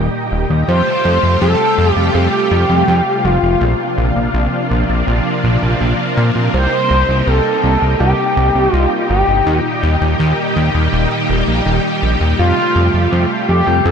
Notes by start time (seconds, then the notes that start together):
Already playing: A#2 D#3 G3 D#4 G4
0.32 D#1
0.50 D#2
0.68 F2 C3 G3 A3 F4 G4 C5
1.05 F2
1.23 F2
1.42 F2 A4
1.78 F2
1.93 F2 G4
2.15 F2 G4
2.51 F2
2.70 F2
2.88 F2
3.24 F1 F4
3.43 F1
3.61 A#1 F3 A#3 D4
3.98 A#1
4.16 A#1
4.34 A#1
4.71 A#1
4.89 A#1
5.07 A#1
5.44 A#1
5.62 A#1
5.81 A#1
6.17 A#2
6.35 A#2
6.54 C2 G3 D#4 G4 C5
6.90 C2
7.09 C2
7.27 C2 A4
7.64 C2
7.82 C2
8.00 C2 G4
8.37 C2
8.55 C2
8.73 C2 F4
9.10 G1 G4
9.28 G1
9.46 D#2 A#2 D#3
9.61 F4
9.83 D#2
10.01 D#2
10.20 D#2
10.56 D#2
10.75 D#2
10.93 D#1
11.29 D#1
11.48 A#1
11.66 D#1
12.03 A#1
12.21 D#2
12.39 F2 C3 A3 F4
12.76 F2
12.94 F2
13.12 F2
13.49 F2 G4
13.67 F2
13.85 F2 A4